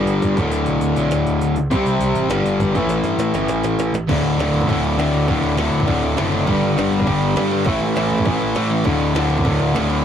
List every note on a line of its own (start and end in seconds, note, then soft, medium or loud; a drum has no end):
0.00 0.35 G2 medium
0.00 0.37 D3 medium
0.00 0.38 G3 medium
0.06 0.18 G1 medium
0.06 open hi-hat medium
0.22 0.34 G1 medium
0.22 kick medium
0.22 open hi-hat medium
0.36 0.48 D1 medium
0.36 0.95 D2 medium
0.36 0.96 A2 loud
0.36 0.94 D3 loud
0.36 kick medium
0.36 open hi-hat medium
0.52 0.63 D1 medium
0.52 open hi-hat medium
0.66 0.79 B1 medium
0.66 open hi-hat medium
0.81 0.93 D2 medium
0.81 open hi-hat medium
0.95 1.07 B1 medium
0.95 1.57 D2 medium
0.95 1.56 A2 medium
0.95 1.55 D3 medium
0.95 open hi-hat medium
1.11 1.23 D1 medium
1.11 snare loud
1.11 open hi-hat medium
1.27 1.38 D1 medium
1.27 open hi-hat medium
1.41 1.53 D1 medium
1.41 open hi-hat medium
1.55 1.67 C#2 loud
1.55 open hi-hat medium
1.70 1.83 C2 medium
1.70 2.28 C3 medium
1.70 2.30 G3 medium
1.70 2.31 C4 loud
1.70 kick loud
1.70 open hi-hat medium
1.86 1.97 C2 medium
1.86 open hi-hat medium
2.00 2.12 C2 loud
2.00 open hi-hat medium
2.15 2.27 A1 medium
2.15 open hi-hat medium
2.29 2.41 G1 loud
2.29 2.73 G2 medium
2.29 2.74 D3 medium
2.29 2.75 G3 medium
2.29 snare loud
2.29 open hi-hat medium
2.44 2.56 G1 medium
2.44 open hi-hat medium
2.60 2.71 G#1 medium
2.60 kick medium
2.60 open hi-hat medium
2.73 2.87 A1 medium
2.73 3.33 A2 medium
2.73 3.34 E3 loud
2.73 3.32 A3 medium
2.73 kick medium
2.73 open hi-hat medium
2.88 3.00 A1 medium
2.88 snare medium
2.88 open hi-hat medium
3.03 3.15 G2 medium
3.03 snare medium
3.03 open hi-hat medium
3.19 3.30 A2 medium
3.19 snare medium
3.19 open hi-hat medium
3.33 3.45 G1 medium
3.33 3.94 E3 medium
3.33 3.93 A3 medium
3.33 snare medium
3.33 open hi-hat medium
3.37 3.95 A2 medium
3.48 3.61 A1 loud
3.48 snare medium
3.48 open hi-hat medium
3.63 3.75 A1 medium
3.63 snare medium
3.63 open hi-hat medium
3.79 3.90 A1 medium
3.79 snare medium
3.79 open hi-hat medium
3.94 4.05 A1 loud
3.94 snare loud
3.94 open hi-hat medium
4.08 4.22 D1 medium
4.08 4.39 D2 loud
4.08 4.38 A2 medium
4.08 4.38 D3 loud
4.08 kick loud
4.08 crash loud
4.08 crash medium
4.23 4.37 D1 medium
4.23 crash medium
4.38 4.51 D1 medium
4.38 4.66 D2 medium
4.38 4.67 A2 loud
4.38 4.68 D3 medium
4.38 snare loud
4.38 crash medium
4.52 4.67 D1 medium
4.52 crash medium
4.61 kick medium
4.67 4.81 D1 medium
4.67 4.97 D2 medium
4.67 4.96 A2 medium
4.67 4.96 D3 medium
4.67 kick loud
4.67 crash medium
4.81 4.96 D1 medium
4.81 crash medium
4.97 5.26 D2 medium
4.97 5.27 A2 medium
4.97 5.27 D3 loud
4.97 snare loud
4.97 crash medium
5.11 5.26 D2 medium
5.11 5.27 A2 medium
5.11 5.26 D3 medium
5.11 crash medium
5.27 5.41 D1 loud
5.27 5.58 D2 medium
5.27 5.57 A2 medium
5.27 5.56 D3 loud
5.27 kick loud
5.27 crash medium
5.42 5.56 D1 medium
5.42 crash medium
5.57 5.71 D1 medium
5.57 5.85 D2 medium
5.57 5.87 A2 medium
5.57 5.87 D3 loud
5.57 snare loud
5.57 crash medium
5.71 5.86 D1 medium
5.71 crash medium
5.80 kick medium
5.87 6.02 D1 medium
5.87 6.17 D2 medium
5.87 6.17 A2 medium
5.87 6.16 D3 medium
5.87 kick loud
5.87 crash medium
6.02 6.17 D1 medium
6.02 crash medium
6.17 6.46 F#1 medium
6.17 6.45 D2 medium
6.17 6.46 A2 loud
6.17 6.45 D3 loud
6.17 snare loud
6.17 crash medium
6.31 6.45 D2 medium
6.31 6.47 A2 medium
6.31 6.46 D3 medium
6.31 crash medium
6.45 6.62 G1 loud
6.45 6.77 G2 loud
6.45 6.76 D3 loud
6.45 6.75 G3 loud
6.45 kick loud
6.45 crash medium
6.63 6.76 G1 medium
6.63 crash medium
6.76 6.90 G1 medium
6.76 7.05 G2 medium
6.76 7.06 D3 medium
6.76 7.06 G3 loud
6.76 snare loud
6.76 crash medium
6.91 7.06 G1 medium
6.91 crash medium
7.00 kick medium
7.06 7.21 G1 medium
7.06 7.36 G2 medium
7.06 7.36 D3 medium
7.06 7.35 G3 loud
7.06 kick loud
7.06 crash medium
7.21 7.36 G1 medium
7.21 crash medium
7.36 7.65 G2 medium
7.36 7.66 D3 medium
7.36 7.65 G3 loud
7.36 snare loud
7.36 crash medium
7.51 7.65 G2 medium
7.51 7.66 D3 medium
7.51 7.65 G3 medium
7.51 crash medium
7.65 7.81 A1 medium
7.65 7.95 A2 loud
7.65 7.95 E3 medium
7.65 7.95 A3 loud
7.65 kick loud
7.65 crash medium
7.80 7.96 A1 medium
7.80 crash medium
7.95 8.11 A1 medium
7.95 8.25 A2 medium
7.95 8.26 E3 medium
7.95 8.27 A3 medium
7.95 snare loud
7.95 crash medium
8.10 8.25 A1 medium
8.10 crash medium
8.18 kick medium
8.25 8.40 A1 medium
8.25 8.56 A2 medium
8.25 8.56 E3 loud
8.25 8.56 A3 loud
8.25 kick loud
8.25 crash medium
8.41 8.55 A1 medium
8.41 crash medium
8.55 8.84 A2 medium
8.55 8.85 E3 loud
8.55 8.86 A3 loud
8.55 snare loud
8.55 crash medium
8.69 8.83 A2 medium
8.69 8.85 E3 medium
8.69 8.87 A3 medium
8.69 crash medium
8.84 8.99 D1 medium
8.84 9.16 D2 loud
8.84 9.14 A2 loud
8.84 9.14 D3 loud
8.84 kick loud
8.84 crash medium
9.00 9.14 D1 medium
9.00 crash medium
9.15 9.29 D1 medium
9.15 9.44 D2 medium
9.15 9.44 A2 loud
9.15 9.45 D3 loud
9.15 snare loud
9.15 crash medium
9.30 9.44 D1 medium
9.30 crash medium
9.38 kick medium
9.45 9.59 D1 medium
9.45 9.75 D2 medium
9.45 9.75 A2 medium
9.45 9.74 D3 medium
9.45 kick loud
9.45 crash medium
9.59 9.74 D1 medium
9.59 crash medium
9.75 10.03 D2 medium
9.75 10.04 A2 medium
9.75 10.05 D3 loud
9.75 snare loud
9.75 crash medium
9.88 10.03 D2 medium
9.88 10.04 A2 medium
9.88 10.03 D3 loud
9.88 crash medium